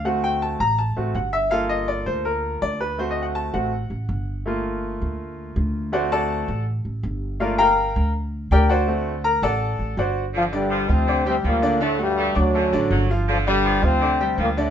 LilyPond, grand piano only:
\new Staff \with { instrumentName = "Grand piano" } { \time 4/4 \key g \minor \tempo 4 = 163 << { fis''8 g''8 a''8 bes''8 a''4 fis''8 e''8 | f''8 ees''8 d''8 c''8 bes'4 d''8 b'8 | \tuplet 3/2 { c''8 ees''8 fis''8 } a''8 fis''2~ fis''8 | r1 |
<fis' c'' d'' fis''>8 <a' d'' fis'' a''>4. r2 | <bes' d'' f''>8 <bes' f'' g'' bes''>4. r4 <g' bes' d'' g''>8 <fis' c'' d'' fis''>8~ | <fis' c'' d'' fis''>4 <bes' bes''>8 <a' d'' fis'' a''>4. <fis' c'' d'' fis''>8. r16 | r8 <d d' d''>4 <f f' f''>8 <d' d'' d'''>8 <g g' g''>4 <d d' d''>8 |
<d d' d''>8 <a fis' fis''>4 <d' d'' d'''>8 <a a' a''>8 <d d' d''>4 <f f' f''>8~ | <f f' f''>8 <d d' d''>4 <f f' f''>8 <d' d'' d'''>8 <g g' g''>4 <d d' d''>8 | } \\ { <a c' fis'>4. r4 <a c' fis'>8 r4 | <bes f' a'>1 | <a c' fis'>4. <a c' fis'>8 r2 | <a bes f'>1 |
<a c'>4. r2 r8 | <a bes f'>8 r2. r8 | <a c' fis'>8 r2. r8 | r1 |
r1 | r1 | } >> }